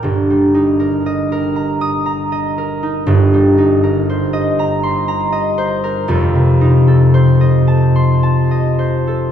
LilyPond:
\new Staff \with { instrumentName = "Harp" } { \time 3/4 \key f \mixolydian \tempo 4 = 59 << { r4. r16 ees'''4~ ees'''16~ | ees'''4.~ ees'''16 c'''4~ c'''16~ | c'''4.~ c'''16 c'''4~ c'''16 | } \\ { <g,, g, bes g' bes' g'' bes''>16 g16 ees'16 bes'16 ees''16 bes'16 bes''8 bes''16 ees''16 bes'16 ees'16 | <g,, g,>16 g16 ees'16 bes'16 c''16 ees''16 bes''8 bes''16 ees''16 c''16 bes'16 | <f,, f,>16 c16 ees'16 a'16 c''16 ees''16 a''8 a''16 ees''16 c''16 a'16 | } >> }